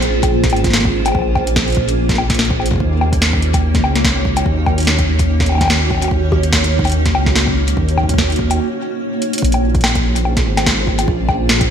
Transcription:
Already playing: detuned saw bass A#1, ambient pad A#3 C#4 F4 G#4 C5
0.02 closed hi-hat
0.23 kick, closed hi-hat, high bongo
0.44 kick, snare, closed hi-hat
0.50 detuned saw bass G#1, closed hi-hat, high bongo
0.56 closed hi-hat
0.64 kick, snare, closed hi-hat
0.66 snare
0.70 snare
0.73 snare
0.77 snare
0.80 snare
0.85 kick
1.06 closed hi-hat, high bongo
1.08 high bongo
1.12 detuned saw bass A#1, kick, high bongo
1.15 high bongo
1.19 high bongo
1.22 high bongo
1.35 kick, high bongo
1.47 closed hi-hat
1.56 kick, snare
1.68 closed hi-hat
1.70 closed hi-hat
1.72 closed hi-hat
1.75 detuned saw bass A#1, kick, closed hi-hat
1.89 closed hi-hat
2.09 kick, snare, closed hi-hat
2.11 snare
2.15 snare, high bongo
2.30 kick, snare, closed hi-hat
2.34 closed hi-hat
2.39 snare, closed hi-hat
2.45 closed hi-hat
2.50 kick
2.60 high bongo
2.66 closed hi-hat
2.71 kick
2.73 kick
2.76 kick
2.78 detuned saw bass D#2, ambient pad C#4 D#4 F#4 C#5, kick
2.80 kick
3.01 high bongo
3.13 kick, closed hi-hat
3.22 snare
3.33 kick
3.42 closed hi-hat
3.54 kick, closed hi-hat, high bongo
3.75 kick, snare, closed hi-hat
3.83 detuned saw bass C#2, high bongo
3.96 snare, closed hi-hat
4.04 kick, snare
4.25 kick
4.37 closed hi-hat, high bongo
4.46 detuned saw bass D#2, kick
4.66 kick, high bongo
4.78 closed hi-hat
4.80 closed hi-hat
4.83 closed hi-hat
4.87 snare
4.99 kick, closed hi-hat
5.08 detuned saw bass D#2
5.19 kick, closed hi-hat
5.40 kick, snare, closed hi-hat
5.42 closed hi-hat
5.46 closed hi-hat, high bongo
5.52 high bongo
5.55 high bongo
5.58 kick, snare, closed hi-hat, high bongo
5.61 high bongo
5.63 high bongo
5.65 high bongo
5.68 snare, high bongo
5.91 kick, high bongo
5.95 high bongo
5.98 high bongo
6.02 closed hi-hat, high bongo
6.04 high bongo
6.08 detuned saw bass D#2, kick, high bongo
6.32 kick, high bongo
6.43 closed hi-hat
6.53 kick, snare
6.64 closed hi-hat
6.79 kick
6.85 closed hi-hat, high bongo
6.87 closed hi-hat
6.90 closed hi-hat
6.92 closed hi-hat
7.06 kick, snare, closed hi-hat
7.15 detuned saw bass C#2, high bongo
7.26 kick, snare
7.36 snare
7.47 kick
7.68 closed hi-hat
7.77 detuned saw bass D#2, kick
7.89 closed hi-hat
7.98 kick, high bongo
8.03 kick
8.09 kick, closed hi-hat
8.14 kick
8.18 kick, snare
8.30 closed hi-hat
8.32 closed hi-hat
8.36 detuned saw bass D#2, kick, closed hi-hat
8.51 closed hi-hat, high bongo
9.22 closed hi-hat
9.33 closed hi-hat
9.38 closed hi-hat
9.42 detuned saw bass A#1, ambient pad A#3 C#4 F4 G#4 C5, kick, closed hi-hat
9.52 closed hi-hat, high bongo
9.75 kick, closed hi-hat
9.81 snare, closed hi-hat, high bongo
9.88 closed hi-hat
9.95 kick, closed hi-hat
10.16 closed hi-hat
10.25 high bongo
10.37 kick, snare, closed hi-hat
10.46 detuned saw bass G#1
10.57 snare, closed hi-hat, high bongo
10.66 kick, snare
10.87 kick
10.99 closed hi-hat, high bongo
11.08 detuned saw bass A#1, kick
11.29 kick, high bongo
11.49 snare
11.61 kick, closed hi-hat

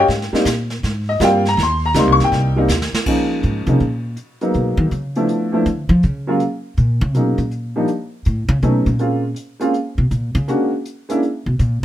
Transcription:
0.08 upright bass G#2, brush sweep, snare
0.22 snare
0.33 upright piano G3 A#3 C4 D#4, muted upright bass stroke, snare
0.45 upright bass A#2, snare, hi-hat pedal
0.70 snare
0.83 upright bass G#2, brush sweep, snare
1.09 upright piano D#5
1.20 upright bass G2, upright piano G3 A#3 C4 F4 G5, snare, hi-hat pedal
1.45 upright piano A#5, snare
1.57 upright bass D#2, brush sweep, snare
1.63 upright piano C6
1.86 upright piano A#5
1.94 upright bass C#2, upright piano G3 A#3 C4 D#4, snare, hi-hat pedal
1.99 upright piano C6
2.07 upright bass C2
2.12 upright piano C#6
2.19 upright bass G#1, snare
2.24 upright piano G5
2.32 upright bass C2, brush sweep, snare
2.56 upright piano G3 A#3 C4 D#4
2.68 upright bass D#2, snare, hi-hat pedal
2.82 snare
2.93 muted upright bass stroke, snare
3.06 upright piano F3 G#3 A#3 C#4 D#4, kick, crash
3.43 upright bass G#2, closed hi-hat
3.66 upright bass C3, upright piano F3 G#3 A#3 C#4 D#4, closed hi-hat
3.80 upright bass A#2, closed hi-hat
4.17 closed hi-hat
4.41 upright piano F#3 G#3 A#3 B3 D#4, closed hi-hat
4.54 upright bass B2, closed hi-hat
4.77 upright bass D#3
4.91 upright bass C#3, closed hi-hat
5.15 upright piano F3 A3 B3 D4 E4, closed hi-hat
5.28 closed hi-hat
5.52 upright piano F3 A3 B3 D4 E4
5.66 upright bass D3, closed hi-hat
5.89 upright bass F3
6.03 upright bass C#3, closed hi-hat
6.27 upright piano F#3 G#3 A#3 C#4 F4
6.40 closed hi-hat
6.77 upright bass A#2, closed hi-hat
7.01 upright bass C#3
7.14 upright bass B2, upright piano F#3 G#3 A#3 C#4 D#4, closed hi-hat
7.38 upright bass A#2, closed hi-hat
7.51 closed hi-hat
7.76 upright piano F3 G3 A#3 D4 D#4
7.88 closed hi-hat
8.25 upright bass A2, closed hi-hat
8.49 upright bass C#3
8.62 upright bass B2, upright piano F#3 A3 B3 C#4 D#4, closed hi-hat
8.86 upright bass A#2, closed hi-hat
8.99 upright piano G#3 A#3 C4 C#4 F4, closed hi-hat
9.36 closed hi-hat
9.59 upright piano G#3 A#3 C4 C#4 F4, closed hi-hat
9.74 closed hi-hat
9.98 upright bass B2
10.11 upright bass A#2, closed hi-hat
10.35 upright bass C#3, closed hi-hat
10.48 upright piano G#3 A#3 C#4 D4 F#4, closed hi-hat
10.85 closed hi-hat
11.09 upright piano G#3 A#3 C#4 D4 E4, closed hi-hat
11.23 closed hi-hat
11.46 upright bass B2
11.59 upright bass A#2, closed hi-hat

